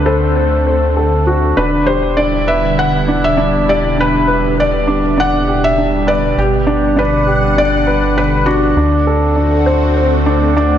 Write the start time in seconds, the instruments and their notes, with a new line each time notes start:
Already playing: analog synth bass D2, analog synth pad D3 A3 C4 F#5, grand piano D4 A4
0.06 felt piano A4, grand piano C5
0.36 grand piano C5
0.67 grand piano C5
0.97 grand piano A4
1.27 grand piano F#4
1.56 analog synth bass E1, analog synth pad B2 G3 E4, grand piano D4, felt piano B4
1.87 grand piano G4, felt piano C5
2.17 grand piano D4, felt piano D5
2.47 grand piano B4, felt piano E5
2.78 grand piano B4, felt piano F#5
3.08 grand piano D4
3.24 felt piano E5
3.37 grand piano D4
3.68 grand piano G4, felt piano D5
3.98 grand piano D4, felt piano B4
4.27 grand piano B4
4.58 grand piano B4, felt piano D5
4.87 grand piano D4
5.18 grand piano D4, felt piano F#5
5.48 grand piano G4
5.64 felt piano E5
5.78 grand piano D4
6.07 grand piano B4, felt piano D5
6.37 analog synth bass G1, analog synth pad D3 F#5, felt piano G4, grand piano B4
6.67 grand piano D4
6.97 grand piano D4, felt piano B4
7.27 grand piano G4
7.56 grand piano D4, felt piano D5
7.87 grand piano B4
8.17 grand piano B4, felt piano B4
8.46 grand piano D4, felt piano F#4
8.76 analog synth bass D2, analog synth pad A3 C4 F#4, grand piano D4
9.07 grand piano A4
9.36 grand piano D4
9.66 grand piano C5
9.97 grand piano C5
10.26 grand piano D4
10.57 grand piano D4